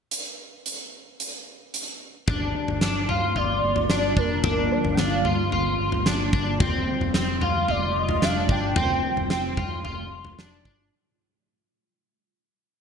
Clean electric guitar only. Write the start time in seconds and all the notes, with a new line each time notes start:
2.28 D4
2.82 D4
3.09 F4
3.36 F4
3.90 D4
4.17 D4
4.44 D4
4.98 D4
5.25 F4
5.52 F4
6.06 D4
6.33 D4
6.60 C4
7.14 C4
7.41 F4
7.68 F4
8.23 D4
8.50 D4
8.76 C4
9.30 C4
9.58 F4
9.85 F4
10.39 D4
10.65 D4